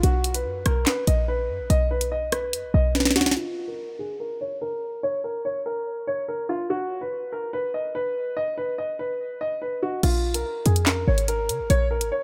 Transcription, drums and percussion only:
0.03 closed hi-hat medium
0.24 closed hi-hat medium
0.34 closed hi-hat medium
0.66 cross-stick loud
0.66 closed hi-hat medium
0.86 snare loud
0.86 clap loud
0.86 closed hi-hat loud
1.07 closed hi-hat medium
1.70 closed hi-hat medium
2.01 closed hi-hat medium
2.32 cross-stick medium
2.32 closed hi-hat medium
2.53 closed hi-hat loud
2.95 snare medium
3.00 snare medium
3.05 snare medium
3.11 snare medium
3.16 snare medium
3.16 closed hi-hat medium
3.21 snare medium
3.26 snare loud
3.26 closed hi-hat medium
3.31 snare loud
3.37 closed hi-hat soft
10.03 closed hi-hat medium
10.03 crash medium
10.34 closed hi-hat medium
10.66 closed hi-hat medium
10.76 closed hi-hat medium
10.86 snare loud
10.86 clap loud
11.18 closed hi-hat medium
11.28 closed hi-hat medium
11.49 closed hi-hat medium
11.70 closed hi-hat medium
12.01 closed hi-hat medium

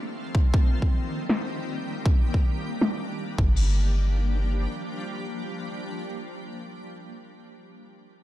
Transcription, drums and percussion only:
0.35 kick medium
0.54 kick loud
0.82 kick medium
1.29 snare loud
2.06 kick loud
2.34 kick medium
2.81 snare loud
3.38 kick loud

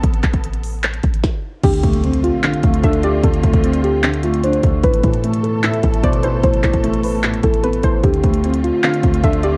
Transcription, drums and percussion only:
0.04 kick loud
0.04 closed hi-hat medium
0.14 closed hi-hat medium
0.24 kick loud
0.24 clap medium
0.24 closed hi-hat medium
0.34 kick loud
0.34 closed hi-hat medium
0.44 closed hi-hat medium
0.54 closed hi-hat medium
0.64 closed hi-hat medium
0.64 open hi-hat medium
0.84 clap loud
0.84 closed hi-hat medium
0.94 closed hi-hat medium
1.03 kick loud
1.03 closed hi-hat medium
1.14 closed hi-hat medium
1.24 kick loud
1.24 snare medium
1.63 kick loud
1.63 closed hi-hat medium
1.63 crash loud
1.74 closed hi-hat medium
1.83 kick loud
1.83 closed hi-hat medium
1.94 closed hi-hat medium
2.04 closed hi-hat medium
2.14 closed hi-hat medium
2.24 closed hi-hat medium
2.44 clap loud
2.44 closed hi-hat medium
2.54 closed hi-hat medium
2.63 kick loud
2.63 closed hi-hat medium
2.74 closed hi-hat medium
2.84 kick loud
2.84 closed hi-hat medium
2.93 closed hi-hat medium
3.03 closed hi-hat medium
3.24 kick loud
3.24 closed hi-hat medium
3.34 closed hi-hat medium
3.44 kick loud
3.44 closed hi-hat medium
3.54 kick loud
3.54 closed hi-hat medium
3.64 closed hi-hat medium
3.74 closed hi-hat medium
3.84 closed hi-hat medium
4.04 clap loud
4.04 closed hi-hat medium
4.14 closed hi-hat medium
4.23 closed hi-hat medium
4.34 closed hi-hat medium
4.44 closed hi-hat medium
4.53 closed hi-hat medium
4.63 kick loud
4.63 closed hi-hat medium
4.84 kick loud
4.84 closed hi-hat medium
4.94 closed hi-hat medium
5.04 kick loud
5.04 closed hi-hat medium
5.14 closed hi-hat medium
5.24 closed hi-hat medium
5.34 closed hi-hat medium
5.44 closed hi-hat medium
5.64 clap loud
5.64 closed hi-hat medium
5.74 closed hi-hat medium
5.83 kick loud
5.83 closed hi-hat medium
5.94 closed hi-hat medium
6.04 kick loud
6.04 closed hi-hat medium
6.13 closed hi-hat medium
6.23 closed hi-hat medium
6.44 kick loud
6.44 closed hi-hat medium
6.54 closed hi-hat medium
6.64 kick loud
6.64 clap medium
6.64 closed hi-hat medium
6.74 kick loud
6.74 closed hi-hat medium
6.84 closed hi-hat medium
6.94 closed hi-hat medium
7.04 closed hi-hat medium
7.04 open hi-hat medium
7.24 clap loud
7.24 closed hi-hat medium
7.34 closed hi-hat medium
7.43 kick loud
7.43 closed hi-hat medium
7.54 closed hi-hat medium
7.64 closed hi-hat medium
7.73 closed hi-hat medium
7.83 kick loud
7.83 closed hi-hat medium
8.04 kick loud
8.04 closed hi-hat medium
8.14 closed hi-hat medium
8.24 kick loud
8.24 closed hi-hat medium
8.34 closed hi-hat medium
8.44 closed hi-hat medium
8.54 closed hi-hat medium
8.64 closed hi-hat medium
8.84 clap loud
8.84 closed hi-hat medium
8.94 closed hi-hat medium
9.03 kick loud
9.03 closed hi-hat medium
9.14 closed hi-hat medium
9.24 kick loud
9.24 closed hi-hat medium
9.33 closed hi-hat medium
9.43 closed hi-hat medium

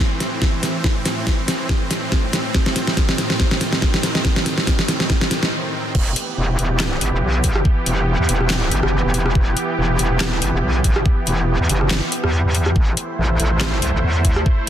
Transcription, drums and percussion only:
0.20 snare medium
0.20 closed hi-hat medium
0.42 kick medium
0.42 snare medium
0.63 snare medium
0.63 closed hi-hat medium
0.84 kick medium
0.84 snare medium
1.06 snare medium
1.06 closed hi-hat medium
1.27 kick loud
1.27 snare medium
1.27 closed hi-hat soft
1.48 snare medium
1.48 closed hi-hat medium
1.69 kick loud
1.69 snare medium
1.91 snare medium
1.91 closed hi-hat medium
2.12 kick loud
2.12 snare medium
2.33 snare medium
2.33 closed hi-hat medium
2.54 kick loud
2.54 snare medium
2.66 snare medium
2.76 snare medium
2.76 closed hi-hat medium
2.87 snare medium
2.97 kick loud
2.97 snare medium
2.97 closed hi-hat soft
3.09 snare medium
3.18 snare medium
3.18 closed hi-hat medium
3.30 snare medium
3.40 kick loud
3.40 snare loud
3.51 snare medium
3.61 snare loud
3.61 closed hi-hat medium
3.73 snare medium
3.82 kick loud
3.82 snare medium
3.94 snare medium
4.03 snare loud
4.03 closed hi-hat medium
4.15 snare medium
4.25 kick loud
4.25 snare loud
4.36 snare medium
4.46 snare loud
4.46 closed hi-hat medium
4.58 snare medium
4.67 kick medium
4.67 snare loud
4.67 closed hi-hat soft
4.79 snare medium
4.88 snare loud
4.88 closed hi-hat medium
5.00 snare medium
5.10 kick loud
5.10 snare loud
5.21 snare loud
5.31 snare loud
5.31 closed hi-hat medium
5.43 snare loud
5.95 kick loud
5.95 crash loud
6.16 closed hi-hat medium
6.59 closed hi-hat medium
6.80 cross-stick medium
6.80 snare loud
6.80 clap medium
7.01 closed hi-hat medium
7.44 kick medium
7.44 closed hi-hat medium
7.55 cross-stick medium
7.65 kick loud
7.86 closed hi-hat medium
8.29 closed hi-hat medium
8.41 cross-stick medium
8.50 snare loud
8.50 clap medium
8.71 closed hi-hat medium
8.83 cross-stick medium
9.14 closed hi-hat medium
9.26 cross-stick medium
9.35 kick loud
9.57 closed hi-hat medium
9.99 closed hi-hat medium
10.20 cross-stick medium
10.20 snare loud
10.20 clap medium
10.42 closed hi-hat medium
10.84 kick medium
10.84 closed hi-hat medium
10.96 cross-stick medium
11.06 kick loud
11.27 closed hi-hat medium
11.69 closed hi-hat medium
11.81 cross-stick medium
11.91 snare loud
11.91 clap medium
12.12 closed hi-hat medium
12.24 cross-stick medium
12.55 closed hi-hat medium
12.66 cross-stick medium
12.76 kick loud
12.97 closed hi-hat medium
13.40 closed hi-hat medium
13.61 cross-stick medium
13.61 snare loud
13.61 clap medium
13.82 closed hi-hat medium
14.25 kick medium
14.25 closed hi-hat medium
14.36 cross-stick medium
14.46 kick loud

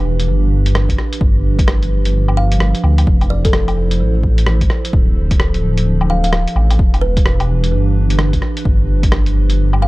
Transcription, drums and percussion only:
0.20 closed hi-hat medium
0.66 closed hi-hat medium
0.75 cross-stick loud
0.89 kick medium
0.89 closed hi-hat soft
0.99 cross-stick medium
1.13 closed hi-hat medium
1.21 kick loud
1.59 kick loud
1.59 closed hi-hat medium
1.68 cross-stick loud
1.83 closed hi-hat soft
2.05 closed hi-hat medium
2.28 low woodblock medium
2.37 low woodblock soft
2.52 closed hi-hat medium
2.60 cross-stick loud
2.75 closed hi-hat soft
2.84 low woodblock soft
2.98 closed hi-hat medium
2.98 low woodblock soft
3.07 kick loud
3.21 closed hi-hat soft
3.21 low woodblock soft
3.45 kick loud
3.45 closed hi-hat medium
3.53 cross-stick loud
3.68 closed hi-hat soft
3.68 low woodblock medium
3.91 closed hi-hat medium
4.23 kick medium
4.38 closed hi-hat medium
4.46 cross-stick loud
4.61 kick medium
4.61 closed hi-hat soft
4.70 cross-stick medium
4.85 closed hi-hat medium
4.93 kick loud
5.31 kick loud
5.31 closed hi-hat medium
5.40 cross-stick loud
5.54 closed hi-hat soft
5.78 closed hi-hat medium
6.01 low woodblock soft
6.10 low woodblock soft
6.24 closed hi-hat medium
6.33 cross-stick loud
6.48 closed hi-hat soft
6.56 low woodblock soft
6.71 closed hi-hat medium
6.71 low woodblock soft
6.79 kick loud
6.94 closed hi-hat soft
6.94 low woodblock soft
7.17 kick loud
7.17 closed hi-hat medium
7.26 cross-stick loud
7.40 closed hi-hat soft
7.40 low woodblock medium
7.64 closed hi-hat medium
8.10 closed hi-hat medium
8.19 cross-stick loud
8.33 kick medium
8.33 closed hi-hat soft
8.42 cross-stick medium
8.57 closed hi-hat medium
8.65 kick loud
9.03 kick loud
9.03 closed hi-hat medium
9.12 cross-stick loud
9.26 closed hi-hat soft
9.50 closed hi-hat medium
9.73 low woodblock medium
9.82 low woodblock soft

